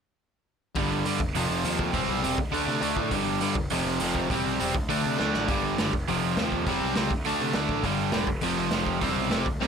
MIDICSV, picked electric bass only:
0, 0, Header, 1, 2, 480
1, 0, Start_track
1, 0, Tempo, 295276
1, 1239, Time_signature, 4, 2, 24, 8
1, 15723, End_track
2, 0, Start_track
2, 0, Title_t, "Picked electric bass"
2, 0, Program_c, 0, 34
2, 1227, Note_on_c, 0, 31, 97
2, 1672, Note_off_c, 0, 31, 0
2, 1722, Note_on_c, 0, 43, 88
2, 1940, Note_off_c, 0, 43, 0
2, 1954, Note_on_c, 0, 29, 75
2, 2176, Note_off_c, 0, 29, 0
2, 2191, Note_on_c, 0, 29, 85
2, 2414, Note_off_c, 0, 29, 0
2, 2421, Note_on_c, 0, 29, 90
2, 2649, Note_off_c, 0, 29, 0
2, 2661, Note_on_c, 0, 39, 71
2, 3108, Note_off_c, 0, 39, 0
2, 3149, Note_on_c, 0, 28, 95
2, 3373, Note_off_c, 0, 28, 0
2, 3391, Note_on_c, 0, 35, 87
2, 3614, Note_off_c, 0, 35, 0
2, 3635, Note_on_c, 0, 28, 89
2, 3856, Note_off_c, 0, 28, 0
2, 3871, Note_on_c, 0, 38, 76
2, 4094, Note_off_c, 0, 38, 0
2, 4108, Note_on_c, 0, 38, 86
2, 4333, Note_off_c, 0, 38, 0
2, 4340, Note_on_c, 0, 48, 95
2, 4569, Note_off_c, 0, 48, 0
2, 4584, Note_on_c, 0, 38, 82
2, 4811, Note_off_c, 0, 38, 0
2, 4820, Note_on_c, 0, 45, 77
2, 5049, Note_off_c, 0, 45, 0
2, 5067, Note_on_c, 0, 31, 101
2, 5512, Note_off_c, 0, 31, 0
2, 5549, Note_on_c, 0, 43, 91
2, 5767, Note_off_c, 0, 43, 0
2, 5777, Note_on_c, 0, 29, 76
2, 6007, Note_off_c, 0, 29, 0
2, 6026, Note_on_c, 0, 29, 87
2, 6244, Note_off_c, 0, 29, 0
2, 6254, Note_on_c, 0, 29, 86
2, 6485, Note_off_c, 0, 29, 0
2, 6511, Note_on_c, 0, 29, 83
2, 6954, Note_off_c, 0, 29, 0
2, 6992, Note_on_c, 0, 28, 101
2, 7215, Note_off_c, 0, 28, 0
2, 7250, Note_on_c, 0, 35, 79
2, 7465, Note_off_c, 0, 35, 0
2, 7480, Note_on_c, 0, 28, 89
2, 7700, Note_off_c, 0, 28, 0
2, 7725, Note_on_c, 0, 38, 78
2, 7942, Note_off_c, 0, 38, 0
2, 7977, Note_on_c, 0, 38, 81
2, 8189, Note_off_c, 0, 38, 0
2, 8229, Note_on_c, 0, 48, 82
2, 8435, Note_off_c, 0, 48, 0
2, 8461, Note_on_c, 0, 38, 76
2, 8671, Note_off_c, 0, 38, 0
2, 8707, Note_on_c, 0, 33, 71
2, 8901, Note_off_c, 0, 33, 0
2, 8910, Note_on_c, 0, 31, 99
2, 9354, Note_off_c, 0, 31, 0
2, 9416, Note_on_c, 0, 30, 82
2, 9628, Note_off_c, 0, 30, 0
2, 9646, Note_on_c, 0, 29, 80
2, 9863, Note_off_c, 0, 29, 0
2, 9893, Note_on_c, 0, 29, 85
2, 10107, Note_off_c, 0, 29, 0
2, 10131, Note_on_c, 0, 29, 78
2, 10345, Note_off_c, 0, 29, 0
2, 10358, Note_on_c, 0, 39, 76
2, 10798, Note_off_c, 0, 39, 0
2, 10835, Note_on_c, 0, 28, 88
2, 11057, Note_off_c, 0, 28, 0
2, 11071, Note_on_c, 0, 35, 86
2, 11294, Note_off_c, 0, 35, 0
2, 11320, Note_on_c, 0, 37, 82
2, 11539, Note_off_c, 0, 37, 0
2, 11553, Note_on_c, 0, 38, 74
2, 11776, Note_off_c, 0, 38, 0
2, 11807, Note_on_c, 0, 38, 86
2, 12023, Note_off_c, 0, 38, 0
2, 12048, Note_on_c, 0, 48, 92
2, 12264, Note_off_c, 0, 48, 0
2, 12280, Note_on_c, 0, 38, 92
2, 12490, Note_off_c, 0, 38, 0
2, 12499, Note_on_c, 0, 33, 75
2, 12728, Note_off_c, 0, 33, 0
2, 12736, Note_on_c, 0, 31, 92
2, 13186, Note_off_c, 0, 31, 0
2, 13241, Note_on_c, 0, 28, 84
2, 13453, Note_off_c, 0, 28, 0
2, 13453, Note_on_c, 0, 29, 82
2, 13677, Note_off_c, 0, 29, 0
2, 13687, Note_on_c, 0, 29, 93
2, 13921, Note_off_c, 0, 29, 0
2, 13948, Note_on_c, 0, 29, 90
2, 14166, Note_off_c, 0, 29, 0
2, 14176, Note_on_c, 0, 29, 74
2, 14625, Note_off_c, 0, 29, 0
2, 14662, Note_on_c, 0, 28, 98
2, 14885, Note_off_c, 0, 28, 0
2, 14895, Note_on_c, 0, 35, 84
2, 15124, Note_off_c, 0, 35, 0
2, 15153, Note_on_c, 0, 28, 89
2, 15374, Note_off_c, 0, 28, 0
2, 15384, Note_on_c, 0, 38, 77
2, 15609, Note_off_c, 0, 38, 0
2, 15617, Note_on_c, 0, 36, 86
2, 15723, Note_off_c, 0, 36, 0
2, 15723, End_track
0, 0, End_of_file